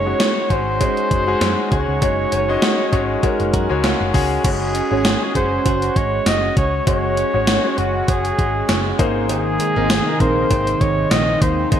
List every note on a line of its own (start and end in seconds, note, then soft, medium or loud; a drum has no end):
0.00 0.13 F#1 medium
0.00 0.06 G#3 medium
0.00 0.20 G#3 medium
0.00 4.40 G#3 medium
0.00 0.06 C#4 medium
0.00 0.50 C#4 medium
0.00 4.41 D#4 medium
0.00 0.07 F#4 medium
0.00 1.10 F#4 medium
0.00 4.41 F#4 medium
0.00 0.81 G#4 medium
0.00 4.46 C5 loud
0.00 0.07 C#5 medium
0.00 0.52 C#5 loud
0.06 0.44 G#3 medium
0.06 0.44 C#4 medium
0.06 0.44 F#4 medium
0.06 0.44 C#5 medium
0.20 0.80 G#3 medium
0.20 snare loud
0.20 closed hi-hat medium
0.20 cowbell medium
0.50 0.86 G#1 medium
0.50 0.76 G#3 medium
0.50 0.76 C#4 medium
0.50 1.41 C#4 medium
0.50 0.77 F#4 medium
0.50 1.71 C5 loud
0.50 0.77 C#5 medium
0.50 kick medium
0.50 closed hi-hat medium
0.80 1.20 G#3 medium
0.80 2.01 G#3 medium
0.80 1.20 C#4 medium
0.80 1.20 F#4 medium
0.80 1.20 G#4 medium
0.80 kick medium
0.80 closed hi-hat medium
0.80 cowbell medium
0.97 closed hi-hat soft
1.11 1.34 F#1 medium
1.11 1.71 F#4 medium
1.11 kick loud
1.11 closed hi-hat medium
1.27 1.65 G#3 medium
1.27 1.65 C#4 medium
1.27 1.65 F#4 medium
1.27 1.65 G#4 loud
1.41 1.54 F#2 medium
1.41 2.32 C#4 medium
1.41 snare medium
1.41 closed hi-hat medium
1.41 cowbell medium
1.71 1.84 C#2 medium
1.71 1.97 G#3 medium
1.71 1.98 C#4 medium
1.71 3.53 F#4 medium
1.71 1.98 F#4 medium
1.71 1.98 G#4 medium
1.71 3.80 C#5 loud
1.71 kick medium
1.71 closed hi-hat medium
1.88 1.99 C#2 medium
2.01 2.25 F#1 loud
2.01 2.41 G#3 medium
2.01 2.62 G#3 medium
2.01 2.41 C#4 medium
2.01 2.41 F#4 medium
2.01 2.41 C#5 medium
2.01 kick loud
2.01 closed hi-hat medium
2.01 cowbell medium
2.32 2.55 F#1 medium
2.32 2.92 C#4 medium
2.32 closed hi-hat medium
2.32 cowbell medium
2.48 2.86 G#3 medium
2.48 2.86 C#4 medium
2.48 2.87 F#4 medium
2.48 2.87 D#5 loud
2.62 3.23 G#3 medium
2.62 snare loud
2.62 closed hi-hat medium
2.62 cowbell medium
2.92 3.16 G#1 medium
2.92 3.19 G#3 medium
2.92 3.19 C#4 medium
2.92 3.83 C#4 medium
2.92 3.19 F#4 medium
2.92 3.19 C#5 loud
2.92 kick medium
2.92 closed hi-hat medium
2.92 cowbell medium
3.23 3.62 G#3 medium
3.23 4.44 G#3 medium
3.23 3.62 C#4 medium
3.23 3.63 F#4 medium
3.23 3.63 A#4 loud
3.23 kick medium
3.23 closed hi-hat medium
3.23 cowbell medium
3.40 3.50 F#1 medium
3.40 closed hi-hat medium
3.54 3.66 F#2 medium
3.54 4.14 F#4 medium
3.54 3.63 A#5 medium
3.54 kick loud
3.54 closed hi-hat medium
3.64 3.82 G#5 medium
3.70 3.93 C#2 medium
3.70 4.07 G#3 medium
3.70 4.08 C#4 medium
3.70 4.08 F#4 medium
3.70 4.08 C#5 loud
3.84 4.75 C#4 medium
3.84 4.12 F5 medium
3.84 snare medium
3.84 closed hi-hat medium
3.84 cowbell medium
4.01 4.11 F#1 medium
4.14 4.37 C#2 medium
4.14 4.40 G#3 medium
4.14 4.40 C#4 medium
4.14 5.05 F#4 medium
4.14 4.40 F#4 medium
4.14 4.41 G#4 loud
4.14 4.42 F#5 medium
4.14 kick loud
4.14 open hi-hat medium
4.44 4.80 F#1 loud
4.44 4.83 G#3 medium
4.44 5.96 G#3 medium
4.44 11.80 G#3 medium
4.44 4.83 C#4 medium
4.44 6.85 C#4 medium
4.44 4.84 F#4 medium
4.44 8.95 F#4 medium
4.44 5.32 G#4 medium
4.44 4.84 C#5 medium
4.44 kick loud
4.44 closed hi-hat medium
4.44 crash medium
4.44 cowbell medium
4.75 5.34 C#4 medium
4.75 closed hi-hat medium
4.91 5.14 G#1 medium
4.91 5.16 G#3 medium
4.91 5.16 C#4 medium
4.91 5.03 C#4 medium
4.91 5.17 F#4 medium
4.91 5.03 G#4 loud
4.91 5.17 C#5 medium
5.05 5.64 F#4 medium
5.05 snare loud
5.05 closed hi-hat medium
5.05 tambourine medium
5.05 cowbell medium
5.21 6.23 G#3 medium
5.21 6.23 C#4 medium
5.21 6.23 F#4 medium
5.21 6.23 G#4 medium
5.35 5.58 F#1 medium
5.35 5.61 C#4 loud
5.35 6.55 C#4 medium
5.35 5.61 G#4 loud
5.35 5.98 C5 loud
5.35 kick medium
5.35 closed hi-hat medium
5.66 5.88 F#1 loud
5.66 6.25 F#4 medium
5.66 kick medium
5.66 closed hi-hat medium
5.66 cowbell medium
5.82 closed hi-hat soft
5.96 6.19 G#1 medium
5.96 6.86 G#3 medium
5.96 6.28 C#5 loud
5.96 kick loud
5.96 closed hi-hat medium
6.26 6.49 F#1 medium
6.26 7.46 F#4 medium
6.26 6.57 D#5 loud
6.26 snare medium
6.26 closed hi-hat medium
6.26 tambourine medium
6.26 cowbell medium
6.57 6.79 C#2 medium
6.57 7.16 C#4 medium
6.57 6.85 C#5 loud
6.57 kick loud
6.57 closed hi-hat medium
6.87 7.22 F#1 loud
6.87 7.26 G#3 medium
6.87 8.38 G#3 medium
6.87 8.97 C#4 medium
6.87 7.26 C#4 medium
6.87 7.26 F#4 medium
6.87 7.80 C#5 loud
6.87 7.26 C#5 medium
6.87 kick loud
6.87 closed hi-hat medium
6.87 cowbell medium
7.17 7.77 C#4 medium
7.17 closed hi-hat medium
7.33 7.57 G#1 medium
7.33 7.59 G#3 medium
7.33 7.59 C#4 medium
7.33 7.59 F#4 medium
7.33 7.59 C#5 medium
7.47 8.07 F#4 medium
7.47 snare loud
7.47 closed hi-hat medium
7.47 tambourine medium
7.47 cowbell medium
7.64 8.65 G#3 medium
7.64 8.65 C#4 medium
7.64 8.65 F#4 medium
7.64 8.65 C#5 medium
7.78 8.01 F#1 medium
7.78 9.06 C#4 medium
7.78 8.10 F#4 medium
7.78 closed hi-hat medium
8.08 8.31 F#1 loud
8.08 8.67 F#4 medium
8.08 8.99 G#4 medium
8.08 kick medium
8.08 closed hi-hat medium
8.08 cowbell medium
8.25 closed hi-hat medium
8.38 8.61 G#1 loud
8.38 9.59 G#3 medium
8.38 kick loud
8.38 closed hi-hat medium
8.69 8.92 F#1 medium
8.69 9.06 F#4 medium
8.69 snare loud
8.69 closed hi-hat medium
8.69 tambourine medium
8.69 cowbell medium
8.98 9.57 G#1 medium
8.98 9.86 G#2 medium
8.98 11.80 C3 medium
8.98 9.28 D#3 medium
8.98 11.80 D#3 medium
8.98 9.63 A#3 medium
8.98 11.39 A#3 medium
8.98 9.63 D#4 medium
8.98 11.80 D#4 loud
8.98 9.63 G#4 medium
8.98 9.63 C5 loud
8.98 kick loud
8.98 closed hi-hat medium
9.29 10.80 D#3 medium
9.29 10.22 G#4 loud
9.29 closed hi-hat medium
9.29 cowbell medium
9.60 9.76 G#3 medium
9.60 closed hi-hat medium
9.76 9.99 G#1 medium
9.76 10.01 A#3 medium
9.76 10.19 A#3 medium
9.76 9.88 C4 medium
9.76 10.01 D#4 medium
9.76 9.88 D#4 loud
9.76 10.02 G#4 medium
9.76 9.88 A#4 loud
9.76 10.02 A#4 medium
9.90 10.49 C4 medium
9.90 snare loud
9.90 closed hi-hat medium
9.90 tambourine medium
9.90 cowbell medium
10.06 11.07 A#3 medium
10.06 11.08 D#4 medium
10.06 11.08 G#4 medium
10.06 11.08 A#4 medium
10.20 10.43 A#1 medium
10.20 11.40 A#3 medium
10.20 10.46 C4 loud
10.20 10.46 D#4 medium
10.20 10.46 A#4 loud
10.20 10.82 C5 loud
10.20 kick medium
10.20 closed hi-hat medium
10.51 10.73 G#1 medium
10.51 11.10 C4 medium
10.51 kick medium
10.51 closed hi-hat medium
10.51 cowbell medium
10.67 closed hi-hat medium
10.81 11.04 G#1 medium
10.81 11.71 D#3 medium
10.81 11.12 C#5 loud
10.81 kick loud
10.81 closed hi-hat medium
11.11 11.34 A#1 medium
11.11 11.80 C4 medium
11.11 11.43 D#5 loud
11.11 snare loud
11.11 closed hi-hat medium
11.11 tambourine medium
11.11 cowbell medium
11.42 11.64 D#2 medium
11.42 11.80 G#2 medium
11.42 11.80 A#3 medium
11.42 11.80 C4 medium
11.42 11.71 C5 loud
11.42 kick loud
11.42 closed hi-hat medium
11.71 11.80 G#1 loud
11.71 11.80 D#3 medium
11.71 11.80 A#3 medium
11.71 11.80 D#4 medium
11.71 11.80 G#4 medium
11.71 11.80 C5 loud
11.71 11.80 D#5 medium
11.71 kick loud
11.71 closed hi-hat medium
11.71 cowbell medium